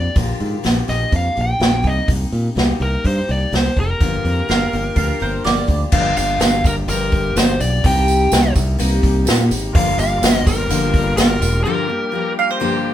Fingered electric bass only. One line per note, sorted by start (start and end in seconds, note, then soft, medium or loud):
0.16 0.31 A#1 medium
0.41 0.56 G#2 medium
0.65 0.80 A#1 medium
0.89 1.04 A#1 medium
1.12 1.28 F2 medium
1.37 1.52 A#1 medium
1.60 1.84 A#1 medium
1.84 2.00 C2 medium
2.08 2.24 C2 medium
2.33 2.48 A#2 medium
2.56 2.72 C2 medium
2.80 2.95 C2 medium
3.05 3.20 G2 medium
3.29 3.44 C2 medium
3.52 3.68 C2 medium
3.77 3.92 F1 medium
4.01 4.16 G1 medium
4.25 4.40 F2 medium
4.49 4.64 G1 medium
4.73 4.88 G1 medium
4.96 5.11 D2 medium
5.22 5.37 G1 medium
5.45 5.60 G1 medium
5.68 5.83 D2 medium
5.92 6.14 G1 medium
6.17 6.38 G1 medium
6.41 6.62 G1 medium
6.65 6.86 G1 medium
6.88 7.31 G1 medium
7.36 7.57 G1 medium
7.61 7.82 B1 medium
7.84 8.27 C2 medium
8.32 8.53 C2 medium
8.56 8.77 C2 medium
8.80 9.01 C2 loud
9.03 9.24 C2 medium
9.28 9.49 A#2 medium
9.51 9.72 G#1 medium
9.75 9.96 G1 medium
9.98 10.19 G1 medium
10.22 10.43 G1 medium
10.46 10.68 G1 medium
10.70 11.12 G1 loud
11.17 11.39 G1 medium
11.41 11.62 E1 medium